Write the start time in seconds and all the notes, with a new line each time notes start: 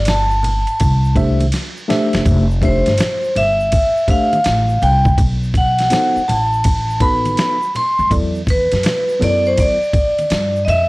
Already playing: G1
0.05 A5, snare, hi-hat pedal, ride, low conga, shaker
0.31 shaker
0.43 ride, low conga, shaker
0.67 ride, shaker
0.80 C2, kick, ride, high conga, shaker
1.04 shaker
1.15 A3 D4 G4 C5 E5, kick, ride, shaker
1.40 ride, high conga, shaker
1.52 snare, hi-hat pedal, ride, shaker
1.77 shaker
1.88 A3 D4 G4 C5 E5, snare, ride, low conga, shaker
2.13 F#1, snare, ride, shaker
2.26 F1, kick, ride, shaker
2.50 shaker
2.62 A3 D4 G4 C5 E5, kick, ride, high conga, shaker
2.86 G1, snare, ride, shaker
2.98 snare, hi-hat pedal, ride, low conga, shaker
3.24 shaker
3.35 G1 E5, ride, low conga, shaker
3.60 shaker
3.72 kick, ride, high conga, shaker
3.97 shaker
4.07 A3 D4 G4 C5 E5 F5, kick, ride, shaker
4.33 ride, high conga, shaker
4.44 A1, snare, hi-hat pedal, ride, shaker
4.69 shaker
4.82 C2 G5, ride, low conga, shaker
5.05 kick, shaker
5.18 B1, kick, ride, shaker
5.43 shaker
5.54 F#5, kick, ride, high conga, shaker
5.79 snare, ride, shaker
5.90 B3 D#4 F#4 A4 C5, snare, hi-hat pedal, ride, low conga, shaker
6.16 muted upright bass stroke, shaker
6.28 A1 A5, ride, low conga, shaker
6.53 shaker
6.64 kick, ride, high conga, shaker
6.90 shaker
7.00 B3 D#4 F#4 A4 B4 B5, kick, ride, shaker
7.25 ride, high conga, shaker
7.37 snare, hi-hat pedal, ride, shaker
7.62 shaker
7.75 C6, ride, low conga, shaker
7.98 F2, shaker
8.10 E2 F#3 B3 E4 A4 D5, kick, ride, shaker
8.35 shaker
8.47 B4, kick, ride, high conga, shaker
8.71 F#2, snare, ride, shaker
8.83 snare, hi-hat pedal, ride, low conga, shaker
9.09 shaker
9.20 F#2 F#3 B3 E4 A4 C#5 D5, ride, low conga, shaker
9.27 D5
9.45 C5, shaker
9.57 D5, kick, ride, high conga, shaker
9.83 shaker
9.93 kick, ride, shaker
10.19 ride, high conga, shaker
10.30 G2, snare, hi-hat pedal, ride, shaker
10.56 shaker
10.65 F2 D#5, ride, low conga, shaker
10.69 E5